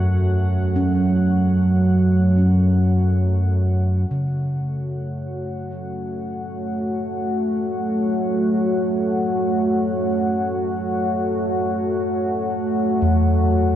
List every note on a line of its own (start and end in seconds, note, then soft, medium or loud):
0.00 1.54 E2 medium
0.00 4.09 F#2 medium
0.00 4.10 F#3 medium
0.00 13.76 A3 medium
0.00 13.76 F#4 medium
0.00 13.76 C#5 medium
0.00 13.76 F#5 medium
0.76 7.19 C#4 medium
4.11 13.76 F#2 medium
4.11 10.54 C#3 soft
4.11 13.76 F#3 medium
4.11 13.76 C#4 medium
13.02 13.76 E2 medium